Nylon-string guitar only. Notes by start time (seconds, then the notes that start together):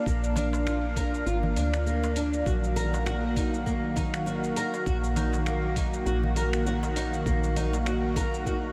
0.06 A#3
0.36 D4
0.66 F4
0.96 A#4
1.26 F4
1.56 D4
1.86 A#3
2.16 D4
2.46 F#4
2.76 A#4
3.06 F#4
3.36 D#4
3.66 A#3
3.96 D#4
4.26 F#4
4.56 A#4
4.86 F#4
5.16 D#4
5.46 A#3
5.76 D#4
6.06 F#4
6.36 A#4
6.66 F#4
6.96 D#4
7.26 A#3
7.56 D#4
7.86 F#4
8.16 A#4
8.46 F#4